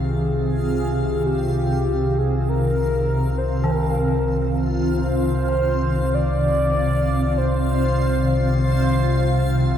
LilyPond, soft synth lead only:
\new Staff \with { instrumentName = "Soft synth lead" } { \time 4/4 \key c \minor \tempo 4 = 49 aes'4 g'8. aes'16 bes'8. c''16 bes'8. r16 | c''4 d''4 c''4 c''8. r16 | }